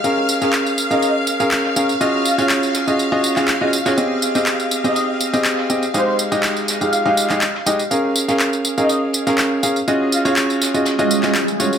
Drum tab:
HH |x-x---x-x-x---x-|x-x---x-x-xx--xx|x-x-x-x-x-x-x-x-|x-x-x-x-x-x-x-x-|
TB |x-xxxxxxx-xxx-xx|x-xxxxxxx-xxx-xx|x-xxxxxxx-xxx-xx|x-xxxxxxx-xxx-xx|
CP |----x-------x---|----x------xx---|----x-------x---|----x------xx---|
SD |---o---------o--|------o-----o--o|---o---------o--|------o------o--|

HH |x-x-x-x-x-x---x-|x-x---x-x-xx-xx-|
TB |x-xxxxxxx-xxx-xx|x-xxxxxxxxxxxxxx|
CP |----x-------x---|----x------xx---|
SD |---o-------oo---|------o-o--o----|